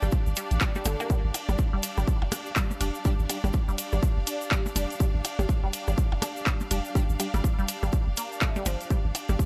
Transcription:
Already playing: string section D4 G4 D5 G5
0.00 sub bass G1, synth arpeggio sound G3, string section F5, percussion blips, shaker
0.12 kick, shaker
0.26 sub bass G1, shaker
0.36 synth arpeggio sound G3, closed hi-hat, shaker
0.51 sub bass A1, closed hi-hat, shaker
0.61 synth arpeggio sound G3, kick, clap, shaker
0.75 synth arpeggio sound G3, percussion blips, shaker
0.85 sub bass G1, synth arpeggio sound D3, closed hi-hat, percussion blips, shaker
1.00 synth arpeggio sound A#3, percussion blips, shaker
1.10 synth arpeggio sound G3, kick, shaker
1.24 sub bass G1
1.34 closed hi-hat, ride, percussion blips, shaker
1.49 sub bass G1, synth arpeggio sound G3, percussion blips, shaker
1.58 kick, shaker
1.73 sub bass F1, synth arpeggio sound G3
1.83 closed hi-hat, ride, shaker
1.97 sub bass G1, synth arpeggio sound G3, percussion blips, shaker
2.08 kick, shaker
2.22 sub bass F1, percussion blips
2.32 synth arpeggio sound D4, closed hi-hat, ride, percussion blips, shaker
2.46 shaker
2.56 synth arpeggio sound G3, kick, clap, shaker
2.71 percussion blips, shaker
2.81 sub bass F1, synth stab G3 D4 G4, synth arpeggio sound D4, closed hi-hat, ride, shaker
2.95 shaker
3.05 synth arpeggio sound G3, synth stab G3 D4 G4, kick, shaker
3.19 sub bass G1, shaker
3.29 synth stab G3 D4 G4, closed hi-hat, ride, percussion blips, shaker
3.44 sub bass G1, synth arpeggio sound G3, percussion blips, shaker
3.53 kick, shaker
3.68 sub bass F1, synth arpeggio sound G3, shaker
3.78 closed hi-hat, ride, shaker
3.92 sub bass G1, synth arpeggio sound G3, percussion blips, shaker
4.03 kick, shaker
4.17 sub bass F1
4.27 synth arpeggio sound D4, closed hi-hat, ride, shaker
4.41 shaker
4.51 synth arpeggio sound G3, kick, clap, shaker
4.66 percussion blips, shaker
4.76 sub bass F1, synth stab G3 D4 G4, synth arpeggio sound D4, closed hi-hat, ride, percussion blips, shaker
4.90 ride, shaker
5.00 synth arpeggio sound G3, kick, shaker
5.15 sub bass G1
5.25 closed hi-hat, ride, percussion blips, shaker
5.39 sub bass G1, synth arpeggio sound G3, percussion blips, shaker
5.49 kick, shaker
5.63 sub bass F1, synth arpeggio sound G3
5.73 closed hi-hat, ride, shaker
5.87 sub bass G1, synth arpeggio sound G3, percussion blips, shaker
5.98 kick, shaker
6.12 sub bass F1, percussion blips
6.22 synth arpeggio sound D4, closed hi-hat, ride, percussion blips, shaker
6.37 shaker
6.46 synth arpeggio sound G3, kick, clap, shaker
6.60 percussion blips, shaker
6.71 sub bass F1, synth stab G3 D4 G4, synth arpeggio sound D4, closed hi-hat, ride, shaker
6.85 shaker
6.95 synth stab G3 D4 G4, synth arpeggio sound G3, kick, shaker
7.10 sub bass G1, shaker
7.20 synth stab G3 D4 G4, closed hi-hat, ride, percussion blips, shaker
7.34 sub bass G1, synth arpeggio sound G3, percussion blips, shaker
7.44 kick, shaker
7.59 sub bass F1, synth arpeggio sound G3, shaker
7.68 closed hi-hat, ride, shaker
7.83 sub bass G1, synth arpeggio sound G3, percussion blips, shaker
7.93 kick, shaker
8.07 sub bass F1
8.17 synth arpeggio sound A#3, closed hi-hat, ride, shaker
8.33 shaker
8.41 synth arpeggio sound A3, kick, clap, shaker
8.56 synth arpeggio sound G3, percussion blips, shaker
8.66 sub bass G1, synth arpeggio sound F3, closed hi-hat, ride, percussion blips, shaker
8.81 ride, shaker
8.90 synth arpeggio sound G3, kick, shaker
9.05 sub bass G1
9.15 closed hi-hat, ride, percussion blips, shaker
9.29 sub bass G1, synth arpeggio sound G3, percussion blips, shaker
9.39 kick, shaker

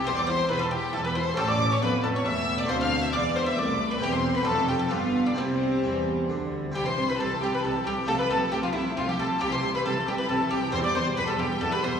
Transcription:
0.04 double bass section E1, cello section E2, harpsichord E2 C4 G4, viola section E4, violin section C5, mandolin C5
0.08 violin section C6
0.17 mandolin D5, violin section D5 D6
0.27 viola section E4, mandolin C5, violin section C5 C6
0.49 double bass section E1, cello section E2, harpsichord E2, viola section E4, mandolin B4, violin section B4 B5
0.59 mandolin A4, violin section A4
0.64 violin section A5
0.71 viola section E4, mandolin G4, violin section G4 G5
0.93 double bass section E1, cello section E2, harpsichord E2, viola section E4, mandolin A4, violin section A4 A5
1.04 violin section B4, mandolin B4
1.09 violin section B5
1.15 viola section E4, violin section C5 C6, mandolin C5
1.34 cello section A2, harpsichord A3 C#4 G4, viola section C#4, mandolin A4, violin section A4
1.38 double bass section A1, harpsichord A2, violin section A5
1.48 violin section D5 D6, mandolin D5
1.71 violin section C#5 C#6, mandolin C#5
1.81 double bass section F1, cello section F2, harpsichord F2, viola section B3, violin section B4 B5, mandolin B4
2.03 violin section A4 A5, mandolin A4
2.15 violin section C#5 C#6, mandolin C#5
2.25 double bass section E1, harpsichord E2, cello section E2, viola section A3, mandolin E5, violin section E5 E6
2.58 mandolin D5, violin section D5 D6
2.65 double bass section D2, harpsichord D2 A3 C4 F4, mandolin C5, violin section C6
2.69 cello section D2, viola section C4, violin section C5
2.80 violin section F5 F6, mandolin F5
3.01 mandolin E5, violin section E5 E6
3.12 double bass section E1, cello section E2, harpsichord E2, viola section B3, mandolin D5, violin section D5 D6
3.34 violin section C5 C6, mandolin C5
3.45 mandolin E5, violin section E5 E6
3.56 cello section C2, double bass section C2, harpsichord C2, viola section A3, violin section D5 D6, mandolin D5
3.90 violin section B4 B5, mandolin B4
3.98 double bass section E1, harpsichord E2 C4 E4, cello section E2, viola section C4, violin section G4 G5
4.03 mandolin G4
4.12 mandolin C5, violin section C5 C6
4.35 mandolin B4, violin section B4 B5
4.42 harpsichord A3 C4 D4, viola section C4, mandolin A4
4.46 double bass section F1, harpsichord F2, cello section F2, violin section A4 A5
4.68 mandolin G4, violin section G4 G5
4.79 mandolin A4, violin section A4 A5
4.89 double bass section G1, cello section G2, harpsichord G2 B3 D4, viola section B3, mandolin F4, violin section F4 F5
5.26 mandolin D4, violin section D4 D5
5.35 double bass section C2, harpsichord C3 C4 E4, cello section C3, viola section G3, mandolin C4, violin section C4 C5
5.83 double bass section E2, cello section E3, harpsichord E3
6.29 double bass section D2, cello section D3, harpsichord D3
6.72 double bass section C2, cello section C3, harpsichord C3 C4 E4, viola section G3, mandolin G4, violin section G4 G5
6.86 viola section E3, mandolin C5, violin section C5 C6
6.97 double bass section C2, cello section C3, harpsichord C3, viola section G3
7.08 viola section E3, violin section B4 B5, mandolin B4
7.18 double bass section C2, harpsichord C3, cello section C3, viola section G3, violin section A4 A5, mandolin A4
7.31 viola section E3
7.41 double bass section C2, harpsichord C3, cello section C3, viola section G3, violin section G4 G5, mandolin G4
7.53 viola section E3, violin section B4 B5, mandolin B4
7.63 double bass section C2, cello section C3, harpsichord C3, viola section G3, violin section A4 A5, mandolin A4
7.75 viola section E3
7.85 double bass section C2, harpsichord C3, cello section C3, viola section G3, violin section G4 G5, mandolin G4
7.97 viola section E3
8.05 double bass section C2, cello section C3, harpsichord C3 C4 F4, viola section A3, violin section A4 A5, mandolin A4
8.18 viola section F3, violin section B4 B5, mandolin B4
8.30 double bass section C2, harpsichord C3, cello section C3, viola section A3, violin section A4 A5, mandolin A4
8.41 viola section F3
8.52 double bass section C2, harpsichord C3, cello section C3, viola section A3, mandolin G4, violin section G4 G5
8.63 viola section F3, violin section F4 F5, mandolin F4
8.73 double bass section C2, harpsichord C3, cello section C3, viola section A3, mandolin E4, violin section E4 E5
8.85 viola section F3
8.96 double bass section C2, harpsichord C3, cello section C3, viola section A3, violin section F4 F5, mandolin F4
9.07 viola section F3, violin section G4 G5, mandolin G4
9.18 double bass section C2, harpsichord C3, cello section C3, viola section A3, mandolin A4, violin section A4 A5
9.30 viola section F3
9.38 double bass section C2, harpsichord C3 C4 E4, cello section C3, viola section G3, mandolin G4, violin section G4 G5
9.52 viola section E3, violin section C5 C6, mandolin C5
9.62 double bass section C2, harpsichord C3, cello section C3, viola section G3
9.73 viola section E3, violin section B4 B5, mandolin B4
9.85 double bass section C2, harpsichord C3, cello section C3, viola section G3, violin section A4 A5, mandolin A4
9.96 viola section E3
10.07 double bass section C2, harpsichord C3, cello section C3, viola section G3, violin section G4 G5, mandolin G4
10.18 viola section E3, violin section B4 B5, mandolin B4
10.28 double bass section C2, cello section C3, harpsichord C3, viola section G3, mandolin A4, violin section A4 A5
10.40 viola section E3
10.50 double bass section C2, harpsichord C3, cello section C3, viola section G3, mandolin G4, violin section G4 G5
10.62 viola section E3
10.71 double bass section E1, harpsichord E2 C4 E4, cello section E2, viola section E3, mandolin C5, violin section C5 C6
10.83 viola section G3, violin section D5 D6, mandolin D5
10.95 double bass section E1, harpsichord E2, cello section E2, viola section E3, violin section C5 C6, mandolin C5
11.06 viola section G3
11.16 double bass section E1, harpsichord E2, cello section E2, viola section E3, violin section B4 B5, mandolin B4
11.27 viola section G3, violin section A4 A5, mandolin A4
11.39 double bass section E1, cello section E2, harpsichord E2, viola section E3, violin section G4 G5, mandolin G4
11.50 viola section G3
11.60 double bass section E1, cello section E2, harpsichord E2, viola section E3, violin section A4 A5, mandolin A4
11.71 viola section G3, violin section B4 B5, mandolin B4
11.82 double bass section E1, cello section E2, harpsichord E2, viola section E3, violin section C5 C6, mandolin C5
11.94 viola section G3

